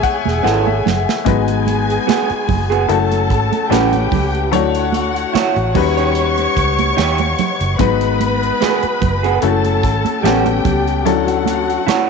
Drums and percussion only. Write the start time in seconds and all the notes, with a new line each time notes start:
0.03 kick, closed hi-hat
0.25 snare, high conga
0.45 snare, muted conga
0.67 muted conga, high conga
0.86 snare, high conga, low conga
1.09 snare
1.26 kick, closed hi-hat, muted conga, low conga
1.48 closed hi-hat, muted conga
1.67 closed hi-hat, high conga
1.90 closed hi-hat
2.09 snare, closed hi-hat, muted conga, high conga
2.30 closed hi-hat
2.49 kick, open hi-hat, high conga, low conga
2.72 closed hi-hat
2.89 closed hi-hat
3.12 closed hi-hat, muted conga
3.30 kick, closed hi-hat
3.52 closed hi-hat, high conga
3.72 snare, closed hi-hat, muted conga
3.93 closed hi-hat, high conga
4.12 kick, open hi-hat, high conga, low conga
4.35 closed hi-hat
4.53 closed hi-hat, muted conga, low conga
4.75 closed hi-hat
4.92 closed hi-hat, high conga
5.16 closed hi-hat
5.35 snare, closed hi-hat, high conga
5.56 closed hi-hat, muted conga
5.75 kick, crash, high conga, low conga
5.97 closed hi-hat
6.15 closed hi-hat
6.38 closed hi-hat, muted conga
6.57 kick, closed hi-hat
6.78 closed hi-hat, high conga
6.98 snare, closed hi-hat, muted conga
7.18 closed hi-hat, high conga
7.39 closed hi-hat, high conga, low conga
7.61 closed hi-hat
7.79 kick, closed hi-hat, muted conga, low conga
8.01 closed hi-hat, muted conga
8.20 closed hi-hat, high conga
8.43 closed hi-hat
8.62 snare, closed hi-hat, muted conga, high conga
8.83 closed hi-hat
9.02 kick, closed hi-hat, high conga, low conga
9.24 closed hi-hat
9.42 closed hi-hat, muted conga
9.65 closed hi-hat, muted conga
9.83 kick, closed hi-hat
10.05 closed hi-hat, high conga
10.25 snare, closed hi-hat
10.46 closed hi-hat, high conga
10.65 kick, closed hi-hat, high conga, low conga
10.88 closed hi-hat
11.06 closed hi-hat, low conga
11.27 closed hi-hat, muted conga
11.46 closed hi-hat, high conga
11.70 closed hi-hat
11.88 snare, closed hi-hat, muted conga, high conga